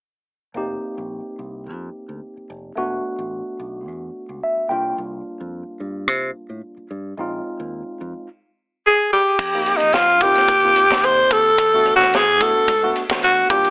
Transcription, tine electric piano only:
0.55 2.73 A#3 medium
0.55 2.73 C4 medium
0.55 2.74 D#4 medium
0.55 2.74 G4 medium
2.76 4.66 A3 medium
2.76 4.67 B3 medium
2.76 4.67 D4 medium
2.76 4.67 F#4 medium
4.43 4.69 E5 medium
4.68 6.86 G3 soft
4.68 6.87 A#3 soft
4.68 6.87 D4 medium
4.68 6.88 F4 medium
4.68 4.96 G5 medium
7.17 8.26 G#3 medium
7.17 8.27 C4 medium
7.17 8.27 D#4 medium
7.17 8.28 F4 medium
9.54 10.03 A#3 medium
9.54 10.02 C4 medium
9.54 10.03 D#4 medium
9.54 10.03 G4 medium
10.23 10.52 A#3 medium
10.23 10.52 C4 medium
10.23 10.52 D#4 medium
10.23 10.53 F4 medium
10.64 10.83 A#3 medium
10.64 10.83 C4 medium
10.64 10.83 D#4 medium
10.64 10.83 F4 medium
10.91 11.50 A#3 medium
10.91 11.50 C4 medium
10.91 11.50 D#4 medium
10.91 11.50 G4 medium
11.74 12.22 A3 medium
11.74 12.23 B3 medium
11.74 12.23 D4 medium
11.74 12.23 F#4 medium
12.42 12.71 A3 medium
12.42 12.71 B3 medium
12.42 12.71 D4 medium
12.42 12.71 F#4 medium
12.83 13.02 A3 medium
12.83 13.02 B3 medium
12.83 13.02 D4 medium
12.83 13.02 F#4 medium
13.11 13.51 A3 medium
13.11 13.51 B3 medium
13.11 13.50 D4 medium
13.11 13.51 F#4 medium
13.49 13.70 G3 medium
13.49 13.70 A#3 medium
13.49 13.70 D4 medium
13.49 13.70 F4 medium

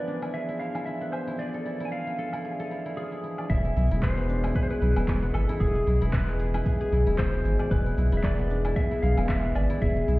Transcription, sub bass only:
3.50 3.73 E1 loud
3.76 3.89 B1 medium
3.91 4.52 E1 loud
4.82 4.94 B1 medium
4.96 5.32 E1 loud
5.34 5.47 G#1 loud
5.60 5.83 E1 loud
5.87 5.99 B1 medium
6.01 6.63 E1 medium
6.92 7.05 B1 medium
7.07 7.42 E1 medium
7.45 7.57 G#1 loud
7.71 7.94 E1 loud
7.97 8.10 B1 medium
8.12 8.74 E1 loud
9.03 9.15 B1 medium
9.18 9.53 E1 loud
9.56 9.68 G#1 loud
9.82 10.04 E1 loud
10.08 10.19 B1 medium

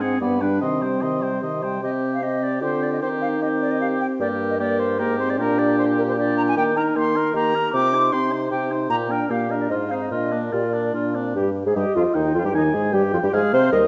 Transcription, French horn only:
0.01 0.20 C4 medium
0.21 0.42 B3 medium
0.41 0.61 G3 soft
0.62 0.83 D#3 soft
0.82 1.04 G3 soft
1.02 1.23 D#3 soft
1.22 1.42 G3 soft
1.43 1.64 D#3 soft
1.63 1.82 G3 soft
1.83 2.20 C4 medium
2.22 2.61 C4 medium
2.62 3.01 C4 medium
3.03 3.41 C4 soft
3.42 4.22 C4 medium
4.21 4.60 A#3 medium
4.60 4.99 A#3 medium
5.00 5.21 A#3 medium
5.19 5.40 C4 medium
5.39 6.00 D4 medium
6.17 6.56 D4 medium
6.57 6.78 A#3 medium
6.76 6.98 D#4 medium
6.96 7.18 A#3 medium
7.16 7.34 D#4 medium
7.35 7.56 A#3 medium
7.55 7.73 D#4 medium
7.73 7.95 C4 medium
7.93 8.15 D#4 soft
8.13 8.33 C4 medium
8.31 8.51 D#4 soft
8.52 8.73 C4 soft
8.72 8.89 D#4 soft
8.90 9.11 A#3 medium
9.10 9.31 D4 medium
9.29 9.52 A#3 medium
9.51 9.70 D4 medium
9.71 9.93 D#4 soft
9.91 10.11 C4 soft
10.12 10.34 D4 soft
10.33 10.52 A#3 soft
10.53 10.62 G4 medium
10.74 10.96 F4 soft
10.94 11.16 D4 medium
11.15 11.36 C4 soft
11.36 11.50 G3 medium
11.66 11.76 G#3 medium
11.77 11.85 G3 medium
11.95 12.04 F3 medium
12.15 12.36 D#3 medium
12.35 12.44 F3 medium
12.44 12.49 G3 medium
12.55 12.73 D#3 medium
12.73 12.93 G#3 medium
12.93 13.02 G3 medium
13.13 13.22 F3 medium
13.23 13.28 G3 medium
13.32 13.55 G#3 medium
13.53 13.72 C4 medium
13.73 13.81 G3 medium

